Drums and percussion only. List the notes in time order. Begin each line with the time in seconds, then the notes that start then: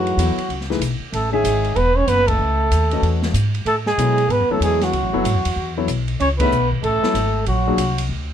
0.07 ride
0.19 hi-hat pedal, ride
0.38 ride
0.50 ride
0.61 snare
0.71 snare
0.81 hi-hat pedal, ride
1.13 ride
1.45 hi-hat pedal, ride
1.64 ride
1.76 ride
2.08 hi-hat pedal, ride
2.28 kick, ride
2.72 hi-hat pedal, ride
2.91 ride
3.03 ride
3.22 snare
3.34 hi-hat pedal, ride
3.55 ride
3.66 ride
3.86 snare
3.99 hi-hat pedal, ride
4.18 ride
4.30 ride
4.62 hi-hat pedal, ride
4.81 snare, ride
4.93 ride
5.25 hi-hat pedal, ride
5.45 ride
5.88 hi-hat pedal, ride
6.08 ride
6.20 ride
6.40 kick, ride
6.52 hi-hat pedal
6.71 kick
6.84 ride
7.03 snare
7.15 hi-hat pedal, ride
7.46 ride
7.78 hi-hat pedal, ride
7.98 ride